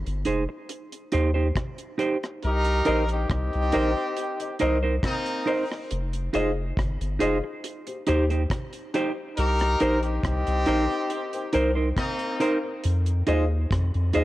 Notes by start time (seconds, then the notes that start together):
0.06 G1, closed hi-hat
0.25 F1 D#4 G#4 C5, closed hi-hat
0.49 muted clean electric guitar stroke
0.69 closed hi-hat
0.92 closed hi-hat
1.12 D#2 D#4 G4 C5, closed hi-hat
1.34 D#4 G4 C5
1.56 kick, cross-stick, closed hi-hat
1.78 closed hi-hat
1.98 D#4 G4 C5, closed hi-hat
2.23 cross-stick, closed hi-hat
2.43 C2 D#4 G4 A#4, closed hi-hat
2.65 closed hi-hat
2.85 A#1 D#4 A#4 C5 D#5, closed hi-hat
3.09 C4 D#4 G4, closed hi-hat
3.30 C2 C4 D#4 G4, kick, cross-stick, closed hi-hat
3.53 C2, closed hi-hat
3.72 A#1 D#4 A#4 C5 D#5, closed hi-hat
3.95 muted clean electric guitar stroke
4.16 closed hi-hat
4.40 C5 D#5, closed hi-hat
4.59 C2 D#4 A#4 C5 D#5, closed hi-hat
4.83 D#4 A#4 C5
5.03 A#3 C4 D#4, kick, cross-stick, closed hi-hat
5.26 closed hi-hat
5.46 D#4 A#4 C5 D#5, open hi-hat
5.71 C5 D#5, cross-stick
5.91 F1, closed hi-hat
6.13 closed hi-hat
6.33 F1 D#4 F4 G#4 C5 D#5, closed hi-hat
6.77 G1, kick, cross-stick, closed hi-hat
7.01 G1, closed hi-hat
7.19 F1 D#4 F4 G#4 C5 D#5, closed hi-hat
7.44 muted clean electric guitar stroke
7.64 closed hi-hat
7.87 G4 C5, closed hi-hat
8.07 D#2 D#4 G4 C5, closed hi-hat
8.30 D#4 G4 C5, closed hi-hat
8.50 kick, cross-stick, closed hi-hat
8.73 closed hi-hat
8.94 D#4 G4 C5, closed hi-hat
9.36 C2 D#4 G4 A#4, closed hi-hat
9.59 cross-stick, closed hi-hat
9.80 A#1 D#4 A#4 C5, closed hi-hat
10.03 C4 D#4 G4, closed hi-hat
10.23 C2 C4 D#4 G4, kick, cross-stick, closed hi-hat
10.47 C2, closed hi-hat
10.66 A#1 D#4 A#4 C5, closed hi-hat
10.90 muted clean electric guitar stroke
11.10 closed hi-hat
11.33 A#4 C5, closed hi-hat
11.53 C2 D#4 A#4 C5, closed hi-hat
11.75 D#4 A#4 C5
11.97 A#3 C4 D#4, kick, cross-stick, closed hi-hat
12.19 closed hi-hat
12.40 D#4 A#4 C5, closed hi-hat
12.64 A#4 C5
12.84 F2, closed hi-hat
13.06 closed hi-hat
13.27 D#2 D#4 F4 G#4 C5 D#5, closed hi-hat
13.71 F2, kick, cross-stick, closed hi-hat
13.94 F2, closed hi-hat
14.13 D#2 D#4 F4 G#4 C5 D#5, closed hi-hat